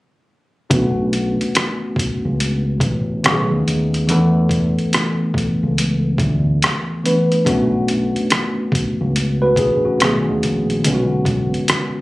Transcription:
0.70 1.36 B1 medium
0.70 3.20 A3 medium
0.70 3.20 B3 medium
0.70 3.21 C#4 medium
0.70 3.20 D4 medium
0.70 kick medium
0.70 closed hi-hat medium
0.74 3.22 F#4 medium
1.13 closed hi-hat soft
1.41 muted fingered electric bass stroke soft
1.41 closed hi-hat soft
1.55 cross-stick medium
1.55 closed hi-hat medium
1.96 muted fingered electric bass stroke soft
1.96 kick medium
1.96 closed hi-hat medium
2.25 2.78 C#2 medium
2.40 closed hi-hat medium
2.80 3.25 A1 medium
2.80 kick medium
2.80 closed hi-hat soft
3.24 3.49 B1 medium
3.24 4.08 D#3 medium
3.24 4.07 A3 medium
3.24 4.08 B3 medium
3.24 4.09 C#4 medium
3.24 3.33 F#4 medium
3.24 cross-stick medium
3.24 closed hi-hat medium
3.32 4.13 G#4 medium
3.52 3.65 D#2 medium
3.67 4.10 D#2 medium
3.67 closed hi-hat medium
3.94 closed hi-hat soft
4.07 4.74 E2 medium
4.07 7.00 E3 medium
4.07 7.00 A3 medium
4.07 7.00 B3 medium
4.07 7.01 D4 medium
4.07 closed hi-hat medium
4.11 7.02 A4 medium
4.49 kick medium
4.49 closed hi-hat soft
4.78 muted fingered electric bass stroke soft
4.78 closed hi-hat soft
4.93 cross-stick medium
4.93 closed hi-hat medium
5.34 muted fingered electric bass stroke soft
5.34 kick medium
5.34 closed hi-hat medium
5.63 6.16 C#2 medium
5.78 closed hi-hat medium
6.18 6.58 D2 medium
6.18 kick medium
6.18 closed hi-hat soft
6.62 cross-stick loud
6.62 closed hi-hat medium
7.04 7.46 E3 soft
7.04 7.45 A3 soft
7.04 7.46 B3 soft
7.04 7.44 D4 soft
7.04 7.47 B4 soft
7.04 closed hi-hat soft
7.32 closed hi-hat soft
7.45 8.11 B1 medium
7.45 9.96 A3 medium
7.45 9.96 B3 medium
7.45 8.72 C#4 medium
7.45 9.58 D4 medium
7.45 8.72 F#4 medium
7.45 kick medium
7.45 closed hi-hat medium
7.88 closed hi-hat medium
8.16 muted fingered electric bass stroke soft
8.16 closed hi-hat soft
8.30 cross-stick medium
8.30 closed hi-hat medium
8.72 muted fingered electric bass stroke soft
8.72 kick medium
8.72 closed hi-hat medium
9.01 9.54 C#2 medium
9.16 closed hi-hat medium
9.42 9.57 F#4 soft
9.42 9.57 B4 medium
9.56 9.96 A1 medium
9.56 9.83 D4 medium
9.56 9.83 G#4 medium
9.56 kick medium
9.56 closed hi-hat soft
9.85 10.02 C#4 soft
9.85 10.25 F#4 medium
10.00 10.25 B1 medium
10.00 10.85 D#3 medium
10.00 10.85 A3 medium
10.00 10.84 B3 medium
10.00 10.85 C#4 medium
10.00 10.86 G#4 medium
10.00 cross-stick loud
10.00 closed hi-hat medium
10.28 10.42 D#2 medium
10.43 10.82 A#1 medium
10.43 closed hi-hat medium
10.70 closed hi-hat soft
10.84 11.50 B1 medium
10.84 12.01 D3 medium
10.84 12.01 G#3 medium
10.84 12.01 B3 medium
10.84 12.01 C#4 medium
10.84 10.94 F4 medium
10.84 closed hi-hat medium
10.94 12.01 F#4 medium
11.25 kick medium
11.25 closed hi-hat medium
11.54 muted fingered electric bass stroke soft
11.54 closed hi-hat soft
11.68 cross-stick medium
11.68 closed hi-hat medium

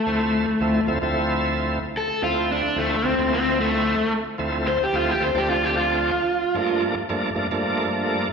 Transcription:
0.00 0.85 A3 medium
0.06 0.46 D2 medium
0.06 0.46 F3 medium
0.06 0.46 A3 medium
0.06 0.46 C4 medium
0.06 0.47 E4 medium
0.60 0.80 D2 medium
0.60 0.81 F3 medium
0.60 0.81 A3 medium
0.60 0.81 C4 medium
0.60 0.81 E4 loud
0.87 0.98 D2 medium
0.87 0.98 F3 medium
0.87 0.98 A3 medium
0.87 0.98 C4 medium
0.87 0.99 E4 loud
1.02 1.79 D2 medium
1.02 1.79 F3 medium
1.02 1.79 A3 medium
1.02 1.79 C4 medium
1.02 1.79 E4 loud
1.97 2.23 A4 loud
2.22 2.62 D2 medium
2.22 2.62 F3 medium
2.22 2.62 A3 medium
2.22 2.63 C4 medium
2.22 2.63 E4 medium
2.22 2.50 F4 medium
2.51 2.77 D4 medium
2.76 2.96 D2 medium
2.76 2.97 F3 medium
2.76 2.97 A3 medium
2.76 3.06 A3 medium
2.76 2.97 C4 medium
2.76 2.97 E4 medium
3.03 3.14 D2 medium
3.03 3.15 F3 medium
3.03 3.15 A3 medium
3.03 3.15 C4 medium
3.03 3.31 C4 medium
3.03 3.15 E4 medium
3.18 3.95 D2 medium
3.18 3.95 F3 medium
3.18 3.95 A3 medium
3.18 3.96 C4 medium
3.18 3.96 E4 medium
3.34 3.59 C4 medium
3.61 4.12 A3 medium
4.38 4.78 D2 medium
4.38 4.78 F3 medium
4.38 4.79 A3 medium
4.38 4.79 C4 medium
4.38 4.79 E4 medium
4.68 4.82 C5 loud
4.84 4.96 G4 medium
4.93 5.13 D2 medium
4.93 5.13 F3 medium
4.93 5.14 A3 medium
4.93 5.14 C4 medium
4.93 5.14 E4 medium
4.93 5.11 F4 medium
5.11 5.22 G4 medium
5.20 5.31 D2 medium
5.20 5.31 F3 medium
5.20 5.31 A3 medium
5.20 5.31 C4 medium
5.20 5.31 E4 medium
5.20 5.37 C5 medium
5.34 6.11 D2 medium
5.34 6.12 F3 medium
5.34 6.12 A3 medium
5.34 6.12 C4 medium
5.34 6.12 D4 medium
5.34 5.49 G4 medium
5.50 5.64 F4 medium
5.64 5.76 G4 medium
5.77 6.81 F4 medium
6.54 6.95 G2 medium
6.54 6.95 F3 medium
6.54 6.95 A3 medium
6.54 6.95 A#3 medium
6.54 6.95 D4 medium
7.09 7.30 G2 medium
7.09 7.30 F3 medium
7.09 7.30 A3 medium
7.09 7.30 A#3 medium
7.09 7.30 D4 medium
7.35 7.47 G2 medium
7.35 7.47 F3 medium
7.35 7.47 A3 medium
7.35 7.47 A#3 medium
7.35 7.47 D4 loud
7.51 8.28 G2 loud
7.51 8.28 F3 medium
7.51 8.28 A3 medium
7.51 8.28 A#3 medium
7.51 8.29 D4 loud

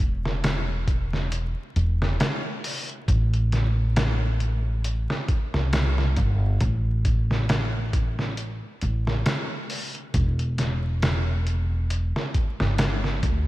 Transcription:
0.00 1.52 E1 medium
0.00 closed hi-hat medium
0.25 snare soft
0.44 snare loud
0.44 closed hi-hat medium
0.88 kick medium
0.88 closed hi-hat medium
1.13 snare soft
1.32 closed hi-hat medium
1.76 2.16 E1 medium
1.76 closed hi-hat medium
2.02 snare soft
2.20 snare loud
2.20 closed hi-hat medium
2.64 open hi-hat medium
2.90 closed hi-hat soft
3.08 5.05 A1 loud
3.08 kick loud
3.08 closed hi-hat medium
3.34 closed hi-hat soft
3.52 snare soft
3.52 closed hi-hat medium
3.96 snare loud
3.96 closed hi-hat medium
4.40 closed hi-hat medium
4.84 closed hi-hat medium
5.10 snare soft
5.28 kick medium
5.28 closed hi-hat medium
5.54 6.14 C2 medium
5.54 snare soft
5.73 snare loud
5.73 closed hi-hat medium
5.98 snare soft
6.17 6.57 G1 medium
6.17 kick medium
6.17 closed hi-hat medium
6.61 8.58 A1 medium
6.61 kick loud
6.61 closed hi-hat medium
7.05 kick medium
7.05 closed hi-hat medium
7.31 snare soft
7.49 snare loud
7.49 closed hi-hat medium
7.93 kick medium
7.93 closed hi-hat medium
8.19 snare soft
8.37 closed hi-hat medium
8.81 9.22 A1 medium
8.81 closed hi-hat medium
9.07 snare soft
9.26 snare loud
9.26 closed hi-hat medium
9.70 open hi-hat medium
9.95 closed hi-hat soft
10.14 12.11 E1 medium
10.14 kick loud
10.14 closed hi-hat medium
10.39 closed hi-hat soft
10.58 snare soft
10.58 closed hi-hat medium
11.02 snare loud
11.02 closed hi-hat medium
11.47 closed hi-hat medium
11.90 closed hi-hat medium
12.16 snare medium
12.34 kick medium
12.34 closed hi-hat medium
12.60 13.20 G1 medium
12.60 snare medium
12.78 snare loud
12.78 closed hi-hat medium
13.04 snare soft
13.23 13.47 D2 medium
13.23 kick medium
13.23 closed hi-hat medium

